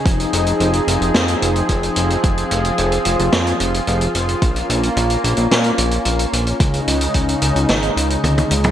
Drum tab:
HH |xxxxxxxxxxxxxxxx|xxxxxxxxxxxxxxxx|xxxxxxxxxxxxxxxx|xxxxxxxxxxxxxxxx|
SD |--------o-------|--------o-------|--------o-------|--------o-------|
T1 |----------------|----------------|----------------|------------oo--|
T2 |----------------|----------------|----------------|---------------o|
BD |o-----------o---|o---------------|o---------------|o---o-----------|